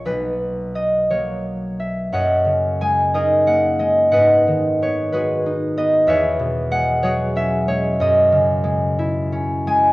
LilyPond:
<<
  \new Staff \with { instrumentName = "Harp" } { \time 6/8 \key fis \mixolydian \tempo 4. = 60 << { <b' dis''>4 dis''8 cis''4 e''8 | fis''4 gis''8 dis''8 fis''8 dis''8 | fis''4 cis''8 b'4 dis''8 | e''4 fis''8 cis''8 e''8 cis''8 |
dis''2~ dis''8 gis''8 | } \\ { r2. | <cis'' dis''>4. <gis' ais'>4. | <b' dis''>4. <fis' gis'>4. | <b' cis''>4. <fis' gis'>4.~ |
<fis' gis'>2. | } >> }
  \new Staff \with { instrumentName = "Harp" } { \clef bass \time 6/8 \key fis \mixolydian <b,, ais>4. <fis ais>4. | fis,8 cis8 gis8 dis'8 ais8 gis8 | gis,8 dis8 b8 gis8 dis'8 b8 | e,8 b,8 gis8 fis8 cis'8 gis8 |
fis,8 cis8 gis8 e'8 cis'8 gis8 | }
>>